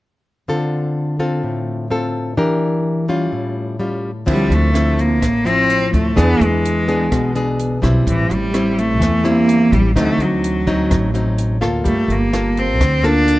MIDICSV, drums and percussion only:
0, 0, Header, 1, 2, 480
1, 0, Start_track
1, 0, Key_signature, -1, "minor"
1, 0, Tempo, 473560
1, 495, Time_signature, 4, 2, 24, 8
1, 13576, End_track
2, 0, Start_track
2, 0, Title_t, "Drums"
2, 4333, Note_on_c, 9, 36, 48
2, 4335, Note_on_c, 9, 49, 56
2, 4434, Note_off_c, 9, 36, 0
2, 4436, Note_off_c, 9, 49, 0
2, 4579, Note_on_c, 9, 42, 28
2, 4680, Note_off_c, 9, 42, 0
2, 4816, Note_on_c, 9, 37, 54
2, 4816, Note_on_c, 9, 42, 44
2, 4917, Note_off_c, 9, 37, 0
2, 4917, Note_off_c, 9, 42, 0
2, 5059, Note_on_c, 9, 42, 26
2, 5160, Note_off_c, 9, 42, 0
2, 5294, Note_on_c, 9, 36, 58
2, 5296, Note_on_c, 9, 37, 56
2, 5296, Note_on_c, 9, 42, 38
2, 5395, Note_off_c, 9, 36, 0
2, 5397, Note_off_c, 9, 37, 0
2, 5397, Note_off_c, 9, 42, 0
2, 5541, Note_on_c, 9, 42, 25
2, 5642, Note_off_c, 9, 42, 0
2, 5777, Note_on_c, 9, 42, 40
2, 5878, Note_off_c, 9, 42, 0
2, 6017, Note_on_c, 9, 36, 51
2, 6020, Note_on_c, 9, 42, 26
2, 6119, Note_off_c, 9, 36, 0
2, 6121, Note_off_c, 9, 42, 0
2, 6257, Note_on_c, 9, 36, 46
2, 6262, Note_on_c, 9, 37, 49
2, 6262, Note_on_c, 9, 42, 40
2, 6359, Note_off_c, 9, 36, 0
2, 6363, Note_off_c, 9, 37, 0
2, 6363, Note_off_c, 9, 42, 0
2, 6501, Note_on_c, 9, 42, 27
2, 6603, Note_off_c, 9, 42, 0
2, 6745, Note_on_c, 9, 42, 41
2, 6846, Note_off_c, 9, 42, 0
2, 6979, Note_on_c, 9, 42, 23
2, 7081, Note_off_c, 9, 42, 0
2, 7216, Note_on_c, 9, 36, 56
2, 7216, Note_on_c, 9, 37, 52
2, 7216, Note_on_c, 9, 42, 39
2, 7318, Note_off_c, 9, 36, 0
2, 7318, Note_off_c, 9, 37, 0
2, 7318, Note_off_c, 9, 42, 0
2, 7455, Note_on_c, 9, 42, 22
2, 7556, Note_off_c, 9, 42, 0
2, 7698, Note_on_c, 9, 42, 39
2, 7800, Note_off_c, 9, 42, 0
2, 7939, Note_on_c, 9, 36, 49
2, 7941, Note_on_c, 9, 37, 54
2, 7941, Note_on_c, 9, 42, 22
2, 8040, Note_off_c, 9, 36, 0
2, 8043, Note_off_c, 9, 37, 0
2, 8043, Note_off_c, 9, 42, 0
2, 8179, Note_on_c, 9, 36, 53
2, 8185, Note_on_c, 9, 42, 39
2, 8280, Note_off_c, 9, 36, 0
2, 8286, Note_off_c, 9, 42, 0
2, 8423, Note_on_c, 9, 42, 25
2, 8524, Note_off_c, 9, 42, 0
2, 8657, Note_on_c, 9, 37, 56
2, 8657, Note_on_c, 9, 42, 41
2, 8759, Note_off_c, 9, 37, 0
2, 8759, Note_off_c, 9, 42, 0
2, 8905, Note_on_c, 9, 42, 25
2, 9007, Note_off_c, 9, 42, 0
2, 9138, Note_on_c, 9, 36, 52
2, 9142, Note_on_c, 9, 37, 55
2, 9142, Note_on_c, 9, 42, 41
2, 9239, Note_off_c, 9, 36, 0
2, 9244, Note_off_c, 9, 37, 0
2, 9244, Note_off_c, 9, 42, 0
2, 9379, Note_on_c, 9, 42, 27
2, 9480, Note_off_c, 9, 42, 0
2, 9619, Note_on_c, 9, 42, 45
2, 9720, Note_off_c, 9, 42, 0
2, 9858, Note_on_c, 9, 36, 50
2, 9862, Note_on_c, 9, 42, 26
2, 9959, Note_off_c, 9, 36, 0
2, 9963, Note_off_c, 9, 42, 0
2, 10100, Note_on_c, 9, 36, 51
2, 10103, Note_on_c, 9, 37, 53
2, 10103, Note_on_c, 9, 42, 37
2, 10201, Note_off_c, 9, 36, 0
2, 10204, Note_off_c, 9, 37, 0
2, 10204, Note_off_c, 9, 42, 0
2, 10342, Note_on_c, 9, 42, 27
2, 10443, Note_off_c, 9, 42, 0
2, 10583, Note_on_c, 9, 42, 42
2, 10684, Note_off_c, 9, 42, 0
2, 10819, Note_on_c, 9, 36, 49
2, 10819, Note_on_c, 9, 42, 26
2, 10920, Note_off_c, 9, 42, 0
2, 10921, Note_off_c, 9, 36, 0
2, 11058, Note_on_c, 9, 37, 53
2, 11058, Note_on_c, 9, 42, 38
2, 11059, Note_on_c, 9, 36, 52
2, 11160, Note_off_c, 9, 36, 0
2, 11160, Note_off_c, 9, 37, 0
2, 11160, Note_off_c, 9, 42, 0
2, 11300, Note_on_c, 9, 42, 26
2, 11402, Note_off_c, 9, 42, 0
2, 11539, Note_on_c, 9, 42, 39
2, 11640, Note_off_c, 9, 42, 0
2, 11778, Note_on_c, 9, 37, 55
2, 11778, Note_on_c, 9, 42, 22
2, 11880, Note_off_c, 9, 37, 0
2, 11880, Note_off_c, 9, 42, 0
2, 12016, Note_on_c, 9, 42, 34
2, 12020, Note_on_c, 9, 36, 53
2, 12117, Note_off_c, 9, 42, 0
2, 12122, Note_off_c, 9, 36, 0
2, 12265, Note_on_c, 9, 42, 23
2, 12367, Note_off_c, 9, 42, 0
2, 12502, Note_on_c, 9, 37, 55
2, 12502, Note_on_c, 9, 42, 40
2, 12604, Note_off_c, 9, 37, 0
2, 12604, Note_off_c, 9, 42, 0
2, 12745, Note_on_c, 9, 42, 24
2, 12846, Note_off_c, 9, 42, 0
2, 12982, Note_on_c, 9, 36, 55
2, 12983, Note_on_c, 9, 37, 55
2, 12983, Note_on_c, 9, 42, 38
2, 13084, Note_off_c, 9, 36, 0
2, 13084, Note_off_c, 9, 37, 0
2, 13084, Note_off_c, 9, 42, 0
2, 13219, Note_on_c, 9, 42, 25
2, 13321, Note_off_c, 9, 42, 0
2, 13460, Note_on_c, 9, 42, 42
2, 13562, Note_off_c, 9, 42, 0
2, 13576, End_track
0, 0, End_of_file